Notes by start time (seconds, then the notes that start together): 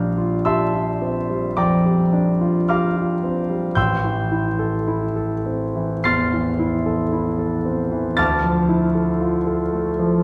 Already playing: A#1 G3 D4 F5 A#5 D6 F6
0.18 F4
0.45 G4 E5 A5 C6 E6
0.73 F4
1.02 C4
1.30 G3
1.57 F2 D5 G5 A#5 D6
1.86 G3
2.13 D4
2.41 F4
2.69 G4 F5 A#5 D6 F6
2.96 F4
3.24 C4
3.50 G3
3.75 A1 G5 C6 E6 G6
4.04 E3
4.32 E4
4.59 A4
4.88 E4
5.16 A4
5.46 C4
5.76 E3
6.04 E2 C6 F6 A6 C7
6.33 E3
6.59 E4
6.86 A4
7.12 E4
7.39 A4
7.65 C4
7.92 E3
8.17 D2 A5 D6 F6 A6
8.43 F3
8.69 E4
8.95 A4
9.20 F4
9.47 A4
9.73 A3
9.99 F3